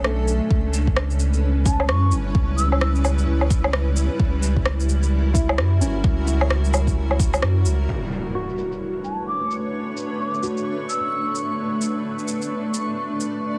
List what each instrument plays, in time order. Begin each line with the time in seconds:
Already playing: sub bass B1, felt piano F#3, ambient pad A3 C#4 D4 A4
0.04 felt piano A3, cross-stick
0.28 shaker
0.50 sub bass C#2, ambient pad G3 C#4 E4 B4, kick
0.74 shaker
0.87 kick
0.97 cross-stick
1.10 shaker
1.19 shaker
1.34 shaker
1.66 felt piano C#4, flute A5, kick, shaker
1.80 low woodblock
1.89 sub bass F#2, flute C#6, cross-stick
2.11 sub bass G1, shaker
2.35 sub bass C#2, kick
2.57 flute E6, shaker
2.71 flute E6, low woodblock
2.80 flute E6, cross-stick
2.95 shaker
3.05 low woodblock, shaker
3.18 shaker
3.27 sub bass C#2
3.41 low woodblock
3.50 kick, shaker
3.64 low woodblock
3.73 cross-stick
3.96 shaker
4.19 sub bass C#2, ambient pad F#4 A#4, kick
4.43 shaker
4.57 kick
4.66 cross-stick
4.80 shaker
4.89 shaker
5.03 shaker
5.34 felt piano E4, kick, shaker
5.49 low woodblock
5.58 sub bass F#2, cross-stick
5.81 sub bass G1, felt piano C#4, shaker
6.04 sub bass C#2, kick
6.27 felt piano E4, shaker
6.41 low woodblock
6.50 cross-stick
6.64 shaker
6.74 low woodblock, shaker
6.87 kick, shaker
6.96 sub bass C#2
7.11 low woodblock
7.19 kick, shaker
7.34 low woodblock, shaker
7.42 sub bass F#2, cross-stick
7.65 sub bass C#2, shaker
7.89 ambient pad A3 D4 B4 C#5, synth texture C#6, impact
8.12 shaker
8.35 felt piano F#4
8.49 shaker
8.58 shaker
8.72 shaker
9.04 flute A5, shaker
9.28 flute D6
9.51 shaker
9.97 shaker
10.20 flute D6
10.34 shaker
10.43 felt piano F#4, shaker
10.57 shaker
10.89 flute E6, shaker
11.35 shaker
11.58 ambient pad D5
11.81 shaker
12.19 shaker
12.28 shaker
12.42 shaker
12.74 shaker
13.20 shaker